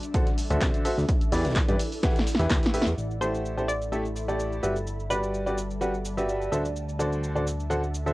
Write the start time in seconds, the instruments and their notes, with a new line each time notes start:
Already playing: ambient pad D4 A4 E5
0.03 closed hi-hat, shaker
0.14 upright piano D3 F#4 A4 C5 F#5, kick, closed hi-hat, shaker
0.27 snare, closed hi-hat, shaker
0.38 snare, closed hi-hat, open hi-hat, shaker
0.50 analog synth bass D2, upright piano D3 F#4 A4 C5 E5, closed hi-hat, shaker
0.61 analog synth bass C2, kick, snare, clap, closed hi-hat, shaker
0.74 closed hi-hat, shaker
0.84 upright piano F#4 A4 C5 E5, closed hi-hat, open hi-hat, shaker
0.97 analog synth bass D2, snare, shaker
1.08 ambient pad E4, kick, closed hi-hat, shaker
1.21 closed hi-hat, shaker
1.32 analog synth bass E2, upright piano E3 E4 G4 B4 D5, snare, closed hi-hat, open hi-hat, shaker
1.39 snare, closed hi-hat
1.45 analog synth bass B1, ambient pad D5, snare, closed hi-hat, shaker
1.50 snare, closed hi-hat
1.56 kick, snare, clap, closed hi-hat, shaker
1.68 analog synth bass G2, upright piano E3 E4 G4 B4 D5, snare, closed hi-hat, shaker
1.79 closed hi-hat, open hi-hat, shaker
1.92 ambient pad F#5, open hi-hat, shaker
2.02 upright piano E3 E4 G4 B4 F#5, kick, snare, closed hi-hat, shaker
2.09 snare, closed hi-hat
2.15 snare, closed hi-hat, shaker
2.19 snare
2.21 snare, closed hi-hat
2.27 snare, closed hi-hat, open hi-hat, shaker
2.35 snare
2.39 analog synth bass E2, upright piano E3 E4 G4 B4 E5, snare, closed hi-hat, shaker
2.50 analog synth bass D2, kick, snare, clap, closed hi-hat, shaker
2.63 snare, closed hi-hat, shaker
2.66 snare
2.74 upright piano A3 E4 G4 B4 E5, snare, open hi-hat, shaker
2.82 snare
2.87 analog synth bass E2, closed hi-hat, shaker
2.97 analog synth bass A1, ambient pad A4, shaker
3.11 ambient pad E5, shaker
3.21 upright piano A3 E4 G4 A4 C5, synth pluck C5, shaker
3.33 ambient pad B5, shaker
3.46 shaker
3.57 upright piano A3 E4 G4 A4 C5, shaker
3.68 synth pluck D5, shaker
3.82 shaker
3.92 upright piano A3 E4 G4 A4 E5, shaker
4.05 shaker
4.16 shaker
4.28 upright piano A3 E4 G4 A4 D5, shaker
4.40 shaker
4.53 shaker
4.63 analog synth bass G1, upright piano G3 F#4 G4 B4 E5, ambient pad G3, shaker
4.76 shaker
4.84 ambient pad D5, shaker
4.95 ambient pad A5
5.00 shaker
5.10 upright piano G3 F#4 G4 B4 D5, synth pluck B4, shaker
5.24 shaker
5.34 shaker
5.46 upright piano G3 F#4 G4 B4 D5, shaker
5.58 shaker
5.71 shaker
5.81 upright piano G3 F#4 G4 B4 F#5, shaker
5.94 shaker
6.05 shaker
6.17 upright piano G3 F#4 G4 B4 E5, shaker
6.29 shaker
6.42 shaker
6.52 analog synth bass D2, upright piano D3 F#4 A4 C5 E5, ambient pad D4, shaker
6.59 ambient pad A4
6.65 shaker
6.76 ambient pad E5, shaker
6.89 shaker
6.99 upright piano D3 F#4 A4 C5 D5, shaker
7.13 shaker
7.24 shaker
7.35 upright piano D3 F#4 A4 C5 D5, shaker
7.47 shaker
7.60 shaker
7.70 upright piano D3 F#4 A4 C5 F#5, shaker
7.83 shaker
7.94 shaker
8.06 upright piano D3 F#4 A4 C5 E5, shaker